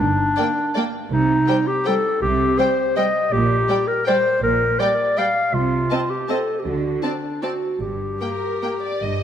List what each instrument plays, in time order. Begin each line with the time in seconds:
0.00 double bass section G1, cello section G2, clarinet D4
0.37 viola section A#3, violin section D5 G5
0.76 viola section A#3, violin section D5 G5
1.11 double bass section C2, cello section C3, clarinet D#4
1.48 viola section G3, violin section C5 G5
1.67 clarinet G4
1.86 viola section G3, clarinet A4, violin section C5 G5
2.22 double bass section C2, cello section C3, clarinet G4
2.59 viola section G3, violin section C5 G5, clarinet C5
2.96 viola section G3, violin section C5 G5, clarinet D#5
3.32 double bass section A#1, cello section A#2, clarinet G4
3.69 viola section G3, violin section D5 G5
3.87 clarinet A#4
4.07 viola section G3, clarinet C5, violin section D5 G5
4.42 double bass section A#1, cello section A#2, clarinet A#4
4.80 viola section G3, clarinet D5, violin section D5 G5
5.18 viola section G3, violin section D5 G5, clarinet F5
5.54 double bass section C2, cello section C3, clarinet F4
5.90 viola section C4, violin section D#5 A5
6.10 clarinet G4
6.29 viola section C4, clarinet A4, violin section D#5 A5
6.59 clarinet G4
6.65 double bass section D2, cello section D3, clarinet F#4
7.03 viola section C4, clarinet D4, violin section D5 A5
7.42 viola section C4, clarinet F#4, violin section D5 A5
7.81 double bass section G1, cello section G2, clarinet G4
8.21 viola section A#3, violin section A#4 G5
8.63 viola section A#3, violin section G5
8.83 violin section D5
9.02 double bass section G1, cello section G2, violin section D#5